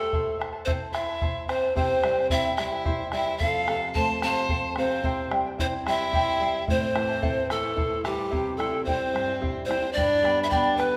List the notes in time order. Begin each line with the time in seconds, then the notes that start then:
Already playing: A3 A4
0.00 E4 C5 G5
0.13 E4 C5 E5 A5, bombo low
0.27 bombo rim
0.39 E4 C5 E5 A5, bombo rim
0.53 E4 C5 A5
0.65 C4 E4 A4 C5 E5 A5, bombo low
0.92 E4 C5 E5 A5, bombo rim
1.08 E4 C5 A5, bombo rim
1.21 E4 C5 E5 A5, bombo low
1.48 C4 E4 C5 E5 A5, bombo rim
1.62 E4 C5 A5
1.75 C3 C4 E4 G4 C5 E5 G5, bombo low
2.03 G3 E4 C5 E5 G5, bombo rim
2.18 E4 C5 G5
2.30 C4 E4 C5 E5 G5, bombo low
2.45 bombo rim
2.57 G3 E4 C5 E5 G5, bombo rim
2.72 E4 C5 G5, bombo rim
2.85 E4 G4 C5 E5 G5, bombo low
3.12 G3 E4 C5 E5 G5, bombo rim
3.26 E4 C5 G5
3.38 F2 A4 C5 F5, bombo low
3.68 C3 A4 C5 F5, bombo rim
3.82 C5 F5
3.94 A3 A4 C5 F5 A5, bombo low
4.22 C3 A4 C5 F5 A5, bombo rim
4.36 C5 F5, bombo rim
4.49 C4 A4 C5 F5, bombo low
4.76 C3 C4 A4 C5 F5, bombo rim
4.91 C5 F5
5.03 C3 E4 G4 C5 E5 G5, bombo low
5.31 G3 E4 C5 E5 G5, bombo rim
5.46 E4 C5 G5
5.58 C4 E4 C5 E5 G5, bombo low
5.73 bombo rim
5.86 G3 E4 C5 E5 G5, bombo rim
5.99 E4 C5 G5, bombo rim
6.13 E4 G4 C5 E5 G5, bombo low
6.41 G3 E4 C5 E5 G5
6.54 E4 C5 G5
6.67 A2 C4 E4 C5 E5 A5, bombo low
6.95 E3 E4 C5 E5 A5, bombo rim
7.08 E4 C5 A5
7.22 C4 E4 A4 C5 E5 A5, bombo low
7.50 E3 A3 E4 A4 C5 E5 A5, bombo rim
7.63 E4 C5 A5
7.76 E4 C5 E5 A5, bombo rim, bombo low
7.92 bombo rim
8.04 E3 G3 E4 G4 C5 E5 A5, bombo rim
8.18 E4 C5 A5
8.31 C3 E4 G4 C5 E5 G5, bombo low
8.56 G3 A3 C4 E4 A4 C5 E5 G5, bombo rim
8.72 E4 C5 G5, bombo rim
8.85 G3 C4 E4 C5 E5 G5, bombo low
9.13 G2 E4 C5 E5 G5, bombo rim
9.27 E4 C5 G5
9.41 G3 C4 E4 G4 C5 E5 G5, bombo low
9.65 G3 C4 E4 C5 E5
9.70 G5, bombo rim
9.82 E4 C5 G5
9.93 G2 D4 D5
9.97 B4 D5 G5 B5, bombo low
10.23 G3 B3 D4 B4 D5 G5 B5, bombo rim
10.38 B4 D5 B5, bombo rim
10.43 G4 E5
10.49 G3 B3 D4 G4 B4 D5 G5 B5, bombo low
10.76 D3 B3 B4 D5 G5
10.80 B5, bombo rim
10.92 B4 D5 B5